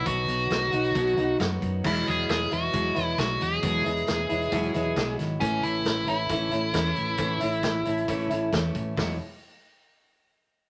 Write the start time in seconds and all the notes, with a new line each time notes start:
0.06 B1 B2 F#3 B3 D#4 F#4, kick, closed hi-hat
0.28 B1, closed hi-hat
0.39 closed hi-hat
0.50 B1, kick, snare, closed hi-hat
0.72 B1 B3 D#4 F#4, closed hi-hat
0.84 closed hi-hat
0.94 B1 B2 F#3 B3 D#4 F#4, kick, closed hi-hat
1.07 closed hi-hat
1.17 B1 B3 D#4 F#4, closed hi-hat
1.38 F#2 F#3 B3 D#4 F#4, kick, snare, closed hi-hat
1.62 F#2, kick, closed hi-hat
1.84 E1 E2 B2 F#3 G#3 B3 E4, kick, crash
2.07 E1 G#4, closed hi-hat
2.29 E1 G#4, snare, closed hi-hat
2.51 E1 F#3 G#3 B3 E4 F#4, closed hi-hat
2.72 E1 E2 B2 F#3 G#3 B3 E4, kick, closed hi-hat
2.94 E1 F#3 G#3 B3 E4, closed hi-hat
3.04 E4
3.18 B1 F#3 G#3 B3 E4 F#4, kick, snare, closed hi-hat
3.41 E1 G#4, closed hi-hat
3.62 E1 E2 B2 F#3 G#3 B3 E4, kick, closed hi-hat
3.84 E1 F#3 G#3 B3 E4, closed hi-hat
3.97 closed hi-hat
4.07 E1, snare, closed hi-hat
4.29 E1 F#3 G#3 B3 E4, closed hi-hat
4.41 closed hi-hat
4.51 E1 E2 B2 F#3 G#3 B3 E4, kick, closed hi-hat
4.63 closed hi-hat
4.74 E1 F#3 G#3 B3 E4, closed hi-hat
4.96 B1 F#3 G#3 B3 E4, kick, snare, closed hi-hat
5.19 G#1, snare, closed hi-hat
5.40 A1 A2 E3 A3 C#4 E4, kick, closed hi-hat
5.63 A1 E4, closed hi-hat
5.85 A1, snare, closed hi-hat
6.07 A1 A3 C#4 E4, closed hi-hat
6.29 A1 A2 E3 A3 C#4 E4, kick, closed hi-hat
6.51 A1 A3 C#4 E4, closed hi-hat
6.73 E2 E3 A3 C#4 E4, kick, snare, closed hi-hat
6.96 A1, closed hi-hat
7.17 A1 A2 E3 A3 C#4 E4, kick, closed hi-hat
7.40 A1 A3 C#4 E4, closed hi-hat
7.52 closed hi-hat
7.63 A1, kick, snare, closed hi-hat
7.85 A1 A3 C#4 E4, closed hi-hat
7.97 closed hi-hat
8.08 A1 A2 E3 A3 C#4 E4, kick, closed hi-hat
8.19 closed hi-hat
8.30 A1 A3 C#4 E4, closed hi-hat
8.52 E2 E3 A3 C#4 E4, kick, snare, closed hi-hat
8.75 A1, kick, closed hi-hat
8.96 E1 E2 B2 F#3 G#3 B3 E4, kick, snare, open hi-hat